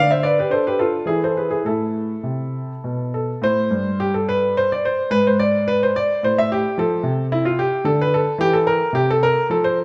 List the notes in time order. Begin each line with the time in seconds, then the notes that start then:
Already playing: D3
0.11 C5 E5
0.23 B4 D5
0.39 G4 B4
0.50 D4 A4 C5
0.67 G4 B4
0.79 F4 A4
1.05 E3 E4 G#4
1.24 A4 C5
1.37 G#4 B4
1.51 E4 G#4
1.65 A2 E4 A4
2.23 C3
2.84 B2
3.14 A4
3.42 A2 C5
3.71 G2
4.00 G4
4.14 A4
4.29 B4
4.57 C5
4.72 D5
4.85 C5
5.10 G#2 B4
5.27 C5
5.39 D5
5.68 B4
5.83 C5
5.96 D5
6.23 A2 C5
6.38 E5
6.52 G4
6.78 F3 A4
7.03 C3
7.32 E4
7.45 F4
7.59 G4
7.84 D3 A4
8.01 B4
8.14 A4
8.38 E3 G4
8.53 A4
8.67 A#4
8.93 C3 G4
9.11 A4
9.23 A#4
9.50 F3 A4
9.64 C5